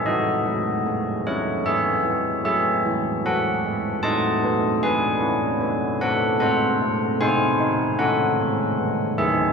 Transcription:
<<
  \new Staff \with { instrumentName = "Church bells" } { \time 4/4 \key e \major \tempo 4 = 76 <fis' dis''>4. <e' cis''>8 <gis' e''>4 <gis' e''>4 | <a' fis''>4 <dis'' a''>4 <b' gis''>4. <a' fis''>8 | <bis' fis''>4 <bis' gis''>4 <a' fis''>4. <gis' e''>8 | }
  \new Staff \with { instrumentName = "Church bells" } { \clef bass \time 4/4 \key e \major e8 fis8 gis8 a8 gis8 e8 fis8 e8 | fis8 gis8 a8 b8 a8 cis'8 b8 a8 | gis8 a8 bis8 dis'8 cis'8 gis8 e8 dis8 | }
>>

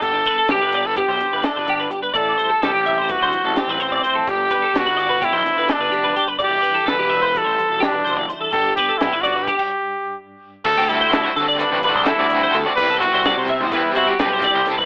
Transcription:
<<
  \new Staff \with { instrumentName = "Clean electric guitar" } { \time 9/8 \key g \major \tempo 4. = 85 g'8 b'16 a'16 g'16 b'16 d''16 b'16 g'16 c''8 b'16 a'16 b'16 g'16 b'16 g'16 b'16 | d''8 c''16 a'16 a'16 g'16 e''16 c''16 b'16 c''8 a'16 g'16 b'16 c''16 d''16 c''16 a'16 | g'8 b'16 a'16 g'16 b'16 d''16 b'16 g'16 c''8 b'16 a'16 b'16 g'16 b'16 g'16 b'16 | d''8 b'16 a'16 a'16 g'16 e''16 c''16 b'16 c''8 a'16 g'16 b'16 c''16 d''16 c''16 a'16 |
g'8 b'16 a'16 g'16 b'16 d''16 b'16 g'16 r2 r16 | r16 g'16 a'16 c''16 a'16 c''16 a'16 d''16 b'8 b'16 c''16 a'16 d''16 b'16 c''16 a'16 d''16~ | d''16 a'16 b'16 c''16 d''16 c''16 e''16 c''16 b'8 e'16 g'16 b'16 c''16 d''16 c''16 a'16 b'16 | }
  \new Staff \with { instrumentName = "Trumpet" } { \time 9/8 \key g \major a'4 g'8. a'16 g'4 d'4 r8 | a'4 g'4 fis'4 c'4. | g'4 fis'4 e'4 d'4 r8 | g'4 b'4 a'4 d'4 r8 |
a'8 g'8 e'8 fis'8 g'4. r4 | a'8 e'4 r8 d'8 d'8 e'4 r8 | b'8 fis'4 r8 e'8 fis'8 g'4 r8 | }
  \new Staff \with { instrumentName = "Overdriven electric guitar" } { \time 9/8 \key g \major r1 r8 | r1 r8 | r1 r8 | r1 r8 |
r1 r8 | <d a c' fis'>8 <a c' fis'>8 <d a c' fis'>4 <d a c' fis'>8 <a c' fis'>8 <d a c' fis'>8 <a c' fis'>8 <d a c' fis'>8 | <c g c' e'>8 <g c' e'>8 <c g c' e'>4 <c g c' e'>8 <g c' e'>8 <c g c' e'>8 <g c' e'>8 <c g c' e'>8 | }
  \new Staff \with { instrumentName = "Clean electric guitar" } { \time 9/8 \key g \major << { <g b>16 d'16 b8 b16 d'16 b16 d'16 b4 d'4 d'8 | e'8 g8 c'8 e'8 g2 e'8 | <d b d'>8 b8 b16 d'16 d'8 b4 d'4 d'8 | <e g d' e'>8 g8 d'8 d'16 e'16 g4 d'4 e'8 |
d'8 b8 b16 d'16 b16 d'8 r2 r16 | r8 g4 g8 c'4 g8 c'4 | <g b e'>4. b8 r4. e'4 | } \\ { g,2~ g,8 d4 d8 g,8 | a,2~ a,8 e4 e8 a,8 | g,2~ g,8 d4 d8 g,8 | e,2~ e,8 e4 e8 e,8 |
g,1~ g,8 | d,4 d4. d4. d,8 | r4 g4. g4. c8 | } >> }
  \new Staff \with { instrumentName = "Picked electric bass" } { \clef bass \time 9/8 \key g \major g,,8 r8 b,,16 g,,4 b,,16 r16 g,,16 r16 g,,16 g,,8 r8 | a,,8 r8 c,16 a,,4 d,16 r16 a,,16 r16 a,,16 a,,8 r8 | g,,8 r8 b,,16 g,,4 b,,16 r16 g,,16 r16 g,,16 f,,8 r8 | e,,8 r8 g,,16 e,,4 a,,16 r16 e,,16 r16 e,,16 fis,,8 r8 |
g,,8 r8 b,,16 g,,4 r2 r16 | d,16 d,8. d,16 r16 d8. a,,8 c,16 r16 d,8. d,16 r16 | c,8. c,8 c8 e,8. c16 r16 b,,8. c,16 r16 c,16 | }
  \new DrumStaff \with { instrumentName = "Drums" } \drummode { \time 9/8 <hh bd>8 <hh bd>8 <hh sn>8 hh8 <hh bd>8 hh8 <hh sn>8 hh8 hh8 | <hh bd>8 hh8 <hh sn>8 hh8 <hh bd>8 hh8 <hh sn>8 hh8 hh8 | <hh bd>8 <hh bd sn>8 <hh sn>8 hh8 <hh bd>8 <hh sn>8 <hh sn>8 hh8 hh8 | <hh bd>8 hh8 <hh sn>8 hh8 <hh bd>8 hh8 <hh sn>8 hh8 hh8 |
<hh bd>8 <hh bd>8 <hh sn>8 <hh sn>8 <hh bd>16 <cymc bd>8. r4. | <cymc bd>8 hh8 <hh sn>8 hh8 hh8 hh8 <hh sn>8 hh8 hh8 | <hh bd>8 <hh bd>8 <hh sn>8 <hh bd>8 <hh bd sn>8 hh8 <hh sn>8 <hh bd sn>8 <hh sn>8 | }
>>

